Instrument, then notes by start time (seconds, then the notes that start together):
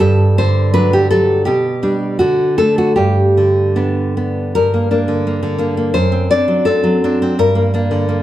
nylon-string guitar
0.00 G2 A4
0.38 D3 C5
0.74 F#3 D4 B4
0.93 G4
1.11 F#3 A4
1.45 B2 G4
1.83 G3 D4
2.19 D3 F#4
2.58 A3 D4 A4
2.78 F#4
2.96 G2 G4
3.37 D3
3.76 B3 D4
4.17 B3
4.55 G2 A#4
4.74 A#3
4.91 A#3 D4
5.08 D3
5.27 A#3
5.43 D3
5.58 A#3 D4
5.77 A#3
5.94 F#2 C5
6.12 C4
6.31 C4 D4 D5
6.48 F#3
6.65 C4 A4
6.84 F#3
7.04 C4 D4
7.22 C4
7.39 G2 A#4
7.55 A#3
7.74 A#3 D4
7.91 D3
8.09 A#3